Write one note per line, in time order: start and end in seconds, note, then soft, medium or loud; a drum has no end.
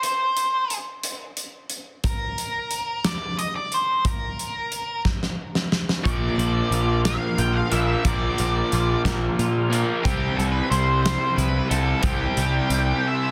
0.03 0.75 C5 medium
0.03 closed hi-hat medium
0.37 closed hi-hat medium
0.70 closed hi-hat medium
1.03 closed hi-hat medium
1.37 closed hi-hat medium
1.70 closed hi-hat medium
2.04 3.08 A#4 medium
2.04 kick loud
2.04 closed hi-hat medium
2.38 closed hi-hat medium
2.71 closed hi-hat medium
3.04 3.38 D5 medium
3.04 snare loud
3.04 closed hi-hat medium
3.39 3.55 D#5 medium
3.39 closed hi-hat medium
3.56 3.74 D5 medium
3.72 4.07 C5 medium
3.72 closed hi-hat medium
4.05 5.02 A#4 medium
4.05 kick loud
4.05 closed hi-hat medium
4.39 closed hi-hat medium
4.72 closed hi-hat medium
5.05 kick medium
5.05 snare medium
5.23 snare soft
5.55 snare medium
5.72 snare medium
5.89 snare medium
6.03 6.27 A#1 medium
6.03 7.68 A#2 medium
6.03 7.72 A#2 medium
6.03 7.69 F3 medium
6.03 7.69 A#3 medium
6.03 7.00 D5 medium
6.03 kick medium
6.03 closed hi-hat medium
6.38 6.60 A#1 medium
6.38 8.05 F3 medium
6.38 closed hi-hat medium
6.71 7.16 A#1 medium
6.71 7.37 F4 medium
6.71 closed hi-hat medium
7.05 7.70 A#3 medium
7.05 7.39 F5 medium
7.05 snare loud
7.05 closed hi-hat medium
7.38 7.61 A#1 medium
7.38 8.73 F4 medium
7.38 7.55 G5 medium
7.38 closed hi-hat medium
7.54 7.69 F5 medium
7.70 7.94 A#1 medium
7.70 8.03 A#2 medium
7.70 8.02 F3 medium
7.70 8.02 A#3 medium
7.70 9.05 A#3 medium
7.70 8.06 E5 medium
7.70 closed hi-hat medium
8.04 8.27 A#1 medium
8.04 9.69 A#2 medium
8.04 9.72 A#2 medium
8.04 9.69 F3 medium
8.04 9.68 A#3 medium
8.04 9.01 D5 medium
8.04 kick loud
8.04 closed hi-hat medium
8.38 8.61 A#1 medium
8.38 10.05 F3 medium
8.38 closed hi-hat medium
8.72 8.94 A#1 medium
8.72 9.38 F4 medium
8.72 closed hi-hat medium
9.05 9.28 A#1 medium
9.05 9.71 A#3 medium
9.05 kick medium
9.05 snare loud
9.05 closed hi-hat medium
9.39 9.83 A#2 medium
9.39 10.05 F4 medium
9.39 closed hi-hat medium
9.70 10.03 A#2 medium
9.70 10.02 F3 medium
9.70 10.01 A#3 medium
9.70 10.05 A#3 medium
9.70 closed hi-hat medium
10.03 10.27 C2 medium
10.03 11.71 C3 medium
10.03 12.02 C3 medium
10.03 11.70 G3 medium
10.03 11.69 C4 loud
10.03 10.38 G4 medium
10.03 kick medium
10.03 closed hi-hat medium
10.36 10.60 C2 medium
10.36 12.37 G3 medium
10.36 10.41 A4 medium
10.36 closed hi-hat medium
10.52 10.70 B4 medium
10.70 11.15 C2 medium
10.70 11.36 E4 medium
10.70 11.01 C5 loud
10.70 closed hi-hat medium
11.02 11.35 C5 medium
11.02 snare loud
11.02 closed hi-hat medium
11.36 11.60 C2 medium
11.36 13.02 E4 medium
11.36 11.69 B4 medium
11.36 closed hi-hat medium
11.70 11.93 C2 medium
11.70 12.01 C3 medium
11.70 12.03 G3 medium
11.70 12.04 C4 medium
11.70 12.04 A4 medium
11.70 closed hi-hat medium
12.01 12.25 C2 medium
12.01 13.31 C3 medium
12.01 13.31 G3 medium
12.01 13.31 C4 medium
12.01 13.31 G4 medium
12.01 kick loud
12.01 closed hi-hat medium
12.37 12.59 C2 medium
12.37 13.31 G3 medium
12.37 closed hi-hat medium
12.70 12.92 C2 medium
12.70 closed hi-hat medium
13.08 13.31 E5 medium